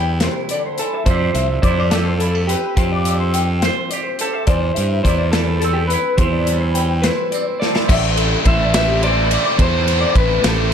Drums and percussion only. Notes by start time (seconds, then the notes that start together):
0.20 snare, closed hi-hat
0.49 closed hi-hat
0.78 closed hi-hat
1.06 kick, closed hi-hat
1.35 closed hi-hat
1.63 kick, closed hi-hat
1.91 snare, closed hi-hat
2.20 closed hi-hat
2.49 closed hi-hat
2.77 kick, closed hi-hat
3.05 closed hi-hat
3.34 closed hi-hat
3.62 snare, closed hi-hat
3.91 closed hi-hat
4.19 closed hi-hat
4.47 kick, closed hi-hat
4.76 closed hi-hat
5.05 kick, closed hi-hat
5.33 snare, closed hi-hat
5.62 closed hi-hat
5.90 closed hi-hat
6.18 kick, closed hi-hat
6.47 closed hi-hat
6.75 closed hi-hat
7.04 snare, closed hi-hat
7.32 closed hi-hat
7.62 snare
7.76 snare
7.89 kick, crash
8.17 ride
8.45 kick, ride
8.74 snare, ride
9.03 ride
9.31 ride
9.59 kick, ride
9.88 ride
10.15 kick, ride
10.44 snare, ride